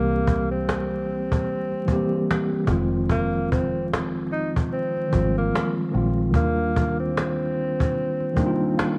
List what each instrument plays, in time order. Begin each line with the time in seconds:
Already playing: fingered electric bass C2, tine electric piano E3 G3 A#3 C4 G4, tenor saxophone A#3
0.08 cajon slap
0.28 cajon bass
0.51 tenor saxophone C4
0.69 cajon slap
0.91 cajon slap
1.07 cajon slap
1.32 cajon bass
1.47 cajon slap
1.72 cajon slap
1.86 tine electric piano E3 G3 A#3, cajon bass
1.91 tine electric piano C4 G4
2.31 cajon slap
2.53 cajon slap
2.64 fingered electric bass F1, tine electric piano D#3 F3 G#3, cajon bass
2.69 tine electric piano C4 F4
3.09 tenor saxophone A#3, cajon bass
3.33 cajon slap
3.52 tenor saxophone C4, cajon bass
3.93 cajon slap
4.15 cajon slap
4.31 tenor saxophone D#4, cajon slap
4.56 cajon bass
4.71 tenor saxophone C4, cajon slap
4.97 cajon slap
5.07 tine electric piano D#3 F3 G3
5.13 fingered electric bass G#1, tine electric piano C4 F4, cajon bass
5.17 tine electric piano G#3
5.38 tenor saxophone A#3
5.55 cajon slap
5.77 cajon slap
5.90 fingered electric bass A#1, tine electric piano D#3 F3 G#3, cajon slap
5.96 tine electric piano C4 F4
6.30 fingered electric bass D#2, tine electric piano D#3 F#3 A#3, cajon bass
6.35 tine electric piano G3 D4 F4, tenor saxophone A#3
6.57 cajon slap
6.76 cajon bass
7.00 tenor saxophone C4, cajon slap
7.17 cajon slap
7.39 cajon slap
7.55 cajon slap
7.80 cajon bass
7.95 cajon slap
8.20 cajon slap
8.33 tine electric piano D#3 G3 A#3 G5, cajon bass
8.38 tine electric piano D4 D#4
8.46 tine electric piano F4
8.77 tine electric piano F5, cajon slap